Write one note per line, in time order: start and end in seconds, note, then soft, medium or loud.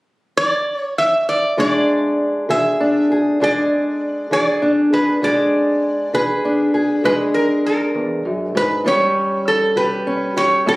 0.37 0.77 D5 loud
0.77 0.93 C#5 loud
0.98 1.28 E5 medium
1.29 1.59 D5 medium
1.57 2.12 E2 medium
1.57 3.41 G#3 medium
1.57 2.80 D4 medium
1.57 2.49 G#4 medium
1.57 2.50 D5 medium
2.49 3.03 E3 medium
2.49 3.11 G#4 medium
2.49 3.06 E5 medium
2.80 3.41 D4 medium
3.12 3.42 G#4 medium
3.40 3.94 E2 medium
3.40 5.19 G#3 medium
3.40 4.61 D4 medium
3.40 4.31 G#4 medium
3.40 4.32 D5 medium
4.31 4.85 E3 medium
4.31 4.92 G#4 medium
4.31 4.94 D5 medium
4.62 5.18 D4 medium
4.93 5.19 G#4 medium
4.93 5.24 B4 medium
5.22 5.76 E2 medium
5.22 7.04 G#3 medium
5.22 6.44 D4 medium
5.22 6.13 G#4 medium
5.22 6.17 D5 medium
6.13 6.68 E3 medium
6.13 6.73 G#4 medium
6.13 7.04 B4 medium
6.45 7.05 D4 medium
6.74 7.04 G#4 medium
7.04 7.58 E2 medium
7.04 8.83 G#3 medium
7.04 8.83 D4 medium
7.04 8.83 G#4 medium
7.04 7.13 B4 medium
7.34 7.65 A#4 medium
7.66 8.22 A#4 medium
7.94 8.25 E2 medium
8.25 8.55 F#2 medium
8.55 8.86 G#2 medium
8.55 8.87 B4 medium
8.84 9.40 A2 medium
8.84 10.66 G3 medium
8.84 10.06 C#4 medium
8.84 9.75 G4 medium
8.84 9.49 C#5 loud
9.48 9.75 A4 medium
9.76 10.31 E3 medium
9.76 10.35 G4 medium
9.76 10.37 B4 medium
10.07 10.66 C#4 medium
10.37 10.67 G4 medium
10.37 10.69 C#5 loud
10.66 10.76 A2 medium
10.66 10.76 G3 medium
10.66 10.76 C#4 medium
10.66 10.76 G4 medium
10.66 10.76 B4 medium